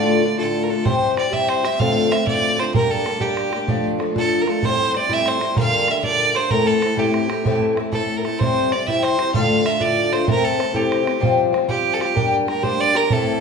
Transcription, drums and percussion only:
0.86 bodhran medium
1.03 bodhran soft
1.17 bodhran medium
1.33 bodhran medium
1.49 bodhran medium
1.65 bodhran medium
1.80 bodhran medium
1.97 bodhran soft
2.12 bodhran medium
2.27 bodhran medium
2.59 bodhran medium
2.75 bodhran medium
2.91 bodhran soft
3.06 bodhran medium
3.21 bodhran medium
3.37 bodhran medium
3.53 bodhran medium
3.68 bodhran medium
3.85 bodhran soft
4.00 bodhran medium
4.16 bodhran medium
4.47 bodhran soft
4.63 bodhran medium
4.79 bodhran soft
4.95 bodhran soft
5.09 bodhran medium
5.26 bodhran medium
5.41 bodhran medium
5.57 bodhran medium
5.73 bodhran soft
5.88 bodhran medium
6.03 bodhran medium
6.35 bodhran soft
6.51 bodhran medium
6.67 bodhran soft
6.82 bodhran medium
6.97 bodhran medium
7.14 bodhran medium
7.30 bodhran medium
7.46 bodhran medium
7.62 bodhran soft
7.77 bodhran medium
7.93 bodhran medium
8.25 bodhran soft
8.41 bodhran medium
8.58 bodhran soft
8.72 bodhran medium
8.88 bodhran medium
9.04 bodhran medium
9.19 bodhran medium
9.34 bodhran medium
9.50 bodhran soft
9.66 bodhran medium
9.81 bodhran medium
10.13 bodhran medium
10.28 bodhran medium
10.45 bodhran soft
10.60 bodhran medium
10.74 bodhran medium
10.92 bodhran medium
11.07 bodhran medium
11.23 bodhran medium
11.40 bodhran soft
11.54 bodhran medium
11.69 bodhran medium
12.01 bodhran medium
12.17 bodhran medium
12.33 bodhran soft
12.48 bodhran medium
12.64 bodhran medium
12.95 bodhran medium
13.10 bodhran medium
13.27 bodhran soft

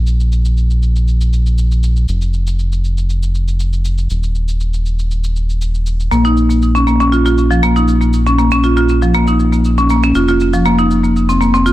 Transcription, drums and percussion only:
0.07 shaker medium
0.20 shaker soft
0.32 shaker soft
0.45 shaker medium
0.57 shaker soft
0.71 shaker soft
0.83 shaker soft
0.96 shaker soft
1.08 shaker soft
1.21 shaker medium
1.33 shaker soft
1.46 shaker soft
1.58 shaker medium
1.72 shaker soft
1.83 shaker medium
1.96 shaker soft
2.08 shaker medium
2.22 shaker soft
2.34 shaker soft
2.47 shaker medium
2.59 shaker soft
2.72 shaker soft
2.84 shaker soft
2.97 shaker soft
3.10 shaker soft
3.23 shaker medium
3.35 shaker soft
3.48 shaker soft
3.60 shaker medium
3.73 shaker soft
3.85 shaker medium
3.98 shaker soft
4.10 shaker medium
4.23 shaker soft
4.35 shaker soft
4.48 shaker medium
4.60 shaker soft
4.74 shaker soft
4.86 shaker soft
4.99 shaker soft
5.11 shaker soft
5.24 shaker medium
5.36 shaker soft
5.50 shaker soft
5.62 shaker medium
5.75 shaker soft
5.87 shaker medium
6.00 shaker soft
6.12 shaker medium
6.25 shaker soft
6.37 shaker soft
6.50 shaker medium
6.62 shaker soft
6.76 shaker soft
6.87 shaker soft
7.01 shaker soft
7.13 shaker soft
7.26 shaker medium
7.38 shaker medium
7.51 shaker medium
7.63 shaker medium
7.76 shaker medium
7.88 shaker medium
8.01 shaker soft
8.13 shaker medium
8.27 shaker medium
8.39 shaker soft
8.52 shaker medium
8.64 shaker medium
8.77 shaker medium
8.89 shaker medium
9.02 shaker medium
9.14 shaker medium
9.27 shaker medium
9.40 shaker medium
9.53 shaker medium
9.65 shaker medium
9.78 shaker medium
9.90 shaker medium
10.03 shaker soft
10.15 shaker medium
10.28 shaker medium
10.40 shaker medium
10.53 shaker medium
10.65 shaker soft
10.79 shaker soft
10.91 shaker medium
11.04 shaker medium
11.16 shaker medium
11.29 shaker medium
11.41 shaker medium
11.55 shaker medium
11.66 shaker medium

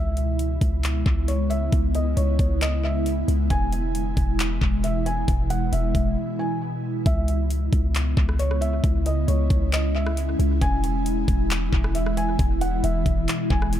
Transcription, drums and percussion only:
0.17 closed hi-hat medium
0.39 closed hi-hat medium
0.61 kick medium
0.61 closed hi-hat medium
0.84 clap loud
0.84 closed hi-hat medium
1.06 kick loud
1.28 closed hi-hat medium
1.51 closed hi-hat medium
1.72 kick loud
1.72 closed hi-hat medium
1.95 closed hi-hat medium
2.17 closed hi-hat medium
2.39 kick medium
2.39 closed hi-hat medium
2.62 clap loud
2.62 closed hi-hat medium
3.06 closed hi-hat medium
3.28 closed hi-hat medium
3.50 kick loud
3.50 closed hi-hat medium
3.73 closed hi-hat medium
3.95 closed hi-hat medium
4.17 kick medium
4.17 closed hi-hat medium
4.39 clap loud
4.39 closed hi-hat medium
4.62 kick loud
4.84 closed hi-hat medium
5.06 closed hi-hat medium
5.28 kick loud
5.28 closed hi-hat medium
5.50 closed hi-hat medium
5.73 closed hi-hat medium
5.95 kick medium
5.95 closed hi-hat medium
7.06 kick loud
7.06 closed hi-hat medium
7.28 closed hi-hat medium
7.50 closed hi-hat medium
7.73 kick medium
7.73 closed hi-hat medium
7.95 clap loud
7.95 closed hi-hat medium
8.17 kick loud
8.29 cross-stick loud
8.39 closed hi-hat medium
8.51 cross-stick medium
8.62 closed hi-hat medium
8.84 kick loud
8.84 closed hi-hat medium
9.06 closed hi-hat medium
9.28 closed hi-hat medium
9.50 kick loud
9.50 closed hi-hat medium
9.73 clap loud
9.73 closed hi-hat medium
10.07 cross-stick loud
10.17 closed hi-hat medium
10.40 closed hi-hat medium
10.61 kick loud
10.61 closed hi-hat medium
10.84 closed hi-hat medium
11.06 closed hi-hat medium
11.28 kick medium
11.28 closed hi-hat medium
11.51 clap loud
11.51 closed hi-hat medium
11.73 kick loud
11.84 cross-stick loud
11.95 closed hi-hat medium
12.06 cross-stick medium
12.17 closed hi-hat medium
12.39 kick loud
12.39 closed hi-hat medium
12.61 closed hi-hat medium
12.84 closed hi-hat medium
13.06 kick medium
13.06 closed hi-hat medium
13.28 clap loud
13.28 closed hi-hat medium
13.50 kick loud
13.62 cross-stick loud
13.73 closed hi-hat medium

